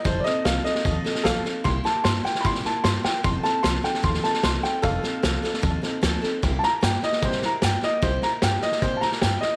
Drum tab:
HH |----p-------p---|----p-------p---|----p-------p---|----p-------p---|
SD |o-o-o-ooo-ooo-o-|o-o-o-ooooo-o-o-|o-o-o-ooooooo-o-|o-o-o-ooo-o-o-o-|
BD |o-------o-------|o-------o-------|o-------o-------|o-------o-------|

HH |----p-------p---|----p-------p---|
SD |o-o-o-ooooo-o-o-|o-o-o-ooo-ooo-o-|
BD |o-------o-------|o-------o-------|